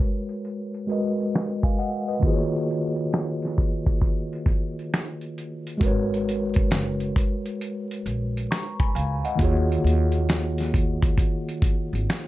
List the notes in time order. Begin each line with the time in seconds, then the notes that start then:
Already playing: G#3 F#4 A#4 B4 C#5
0.00 kick, closed hi-hat
0.29 closed hi-hat
0.45 closed hi-hat
0.74 closed hi-hat
0.87 G#3 F#4 A#4 B4, closed hi-hat
0.92 D#5
1.20 closed hi-hat
1.35 finger snap, snare, closed hi-hat
1.63 F5 G#5, kick, closed hi-hat
1.79 D#5 F#5, closed hi-hat
2.08 B4 D#5, closed hi-hat
2.19 D#3 A#3 F4, kick
2.24 F#4 G#4 C5, closed hi-hat
2.34 C#5
2.56 closed hi-hat
2.71 closed hi-hat
2.96 closed hi-hat
3.13 finger snap, snare, closed hi-hat
3.42 snare, closed hi-hat
3.58 kick, closed hi-hat
3.86 kick, closed hi-hat
4.01 kick, closed hi-hat
4.33 closed hi-hat
4.46 kick, closed hi-hat
4.79 closed hi-hat
4.94 finger snap, snare, closed hi-hat
5.21 closed hi-hat
5.38 closed hi-hat
5.67 closed hi-hat
5.78 G#1 G#3 F#4, kick
5.82 A#4 B4, closed hi-hat
5.86 C#5
6.14 closed hi-hat
6.29 closed hi-hat
6.54 kick, closed hi-hat
6.71 F#1, finger snap, snare, closed hi-hat
7.00 closed hi-hat
7.16 kick, closed hi-hat
7.46 closed hi-hat
7.61 closed hi-hat
7.91 closed hi-hat
8.06 A#1, closed hi-hat
8.37 closed hi-hat
8.51 A#5 C#6, finger snap, snare, closed hi-hat
8.80 G#5 B5, kick, closed hi-hat
8.95 C#2 F5 G#5, closed hi-hat
9.24 D#5 F#5, closed hi-hat
9.35 D#3 A#3 F4, kick
9.39 D#2 F#4 G#4, closed hi-hat
9.44 C#5
9.72 closed hi-hat
9.84 D#2, closed hi-hat
10.12 closed hi-hat
10.29 finger snap, snare, closed hi-hat
10.58 snare, closed hi-hat
10.74 kick, closed hi-hat
11.02 kick, closed hi-hat
11.18 kick, closed hi-hat
11.49 closed hi-hat
11.62 kick, closed hi-hat
11.93 G#1, closed hi-hat
12.10 finger snap, snare, closed hi-hat